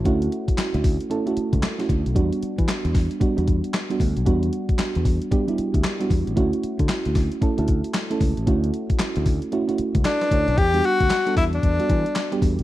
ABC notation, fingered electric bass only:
X:1
M:4/4
L:1/16
Q:"Swing 16ths" 1/4=114
K:Edor
V:1 name="Fingered electric bass" clef=bass
D,,2 z3 D,,2 z4 C,, z2 D,, B,,, | E,, z2 E, z E,,2 z2 E,,2 z3 D,, B,,, | E,,2 z3 E,,2 z4 D,, z2 E,, A,,, | D,, z2 D, z D,,2 z2 D,,2 z3 C,, A,,, |
D,,2 z3 D,,2 z4 C,, z2 D,, B,,, | E,,2 z D,, z2 E,,2 E,, z E, z3 E,, B,,, |]